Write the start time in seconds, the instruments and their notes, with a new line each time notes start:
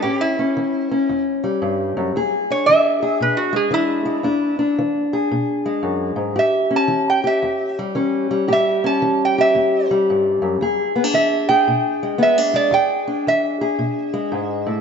0.02 steel-string acoustic guitar A2 C#4, resonator guitar played with a steel bar G4
0.21 resonator guitar played with a steel bar E4
0.39 steel-string acoustic guitar C#4
0.57 steel-string acoustic guitar E3
0.92 steel-string acoustic guitar C#4
1.09 steel-string acoustic guitar E2
1.44 steel-string acoustic guitar G3
1.62 steel-string acoustic guitar G2
1.97 steel-string acoustic guitar F#2
2.16 steel-string acoustic guitar E2 G#4
2.50 steel-string acoustic guitar D4, resonator guitar played with a steel bar C#5
2.66 steel-string acoustic guitar E3, resonator guitar played with a steel bar E5
3.03 steel-string acoustic guitar G#4
3.21 steel-string acoustic guitar B2, resonator guitar played with a steel bar B4
3.37 resonator guitar played with a steel bar F#4
3.53 steel-string acoustic guitar G#3, resonator guitar played with a steel bar G#4
3.71 steel-string acoustic guitar E3 D4, resonator guitar played with a steel bar E4
4.06 steel-string acoustic guitar G#3
4.23 steel-string acoustic guitar E2 D4
4.59 steel-string acoustic guitar D4
4.79 steel-string acoustic guitar E3
5.13 steel-string acoustic guitar G#4
5.31 steel-string acoustic guitar B2
5.66 steel-string acoustic guitar G#3
5.83 steel-string acoustic guitar F#2
6.16 steel-string acoustic guitar G#2
6.36 steel-string acoustic guitar A2 G4, resonator guitar played with a steel bar E5
6.71 steel-string acoustic guitar C#4
6.76 resonator guitar played with a steel bar A5
6.88 steel-string acoustic guitar E3
7.10 resonator guitar played with a steel bar G5
7.24 steel-string acoustic guitar G4, resonator guitar played with a steel bar E5
7.42 steel-string acoustic guitar E2
7.79 steel-string acoustic guitar G3
7.95 steel-string acoustic guitar E3 C#4
8.31 steel-string acoustic guitar G3
8.48 steel-string acoustic guitar A2 G4
8.53 resonator guitar played with a steel bar E5
8.84 steel-string acoustic guitar C#4, resonator guitar played with a steel bar A5
9.02 steel-string acoustic guitar E3
9.25 resonator guitar played with a steel bar G5
9.38 steel-string acoustic guitar G4, resonator guitar played with a steel bar E5
9.55 steel-string acoustic guitar E2
9.91 steel-string acoustic guitar G3
10.10 steel-string acoustic guitar G2
10.42 steel-string acoustic guitar F#2
10.61 steel-string acoustic guitar E2 G#4
10.96 steel-string acoustic guitar B3
11.04 steel-string acoustic guitar D4
11.14 steel-string acoustic guitar E3, resonator guitar played with a steel bar E5
11.49 steel-string acoustic guitar G#4, resonator guitar played with a steel bar G5
11.68 steel-string acoustic guitar B2
12.03 steel-string acoustic guitar G#3
12.18 steel-string acoustic guitar E3 B3
12.23 resonator guitar played with a steel bar E5
12.38 steel-string acoustic guitar D4
12.54 steel-string acoustic guitar G#3, resonator guitar played with a steel bar D5
12.71 steel-string acoustic guitar E2 G#4, resonator guitar played with a steel bar G5
13.08 steel-string acoustic guitar D4
13.27 steel-string acoustic guitar E3, resonator guitar played with a steel bar E5
13.61 steel-string acoustic guitar G#4
13.79 steel-string acoustic guitar B2
14.14 steel-string acoustic guitar G#3
14.32 steel-string acoustic guitar G#2
14.67 steel-string acoustic guitar A2